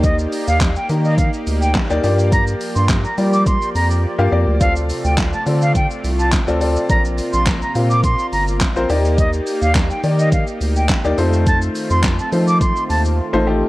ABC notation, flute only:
X:1
M:4/4
L:1/16
Q:1/4=105
K:Eblyd
V:1 name="Flute"
e z2 f z g z e f z2 g z4 | b z2 c' z b z d' c'2 b z4 z | f z2 g z a z f g z2 a z4 | b z2 c' z b z d' c'2 b z4 z |
e z2 f z g z e f z2 g z4 | a z2 c' z a z d' c'2 a z4 z |]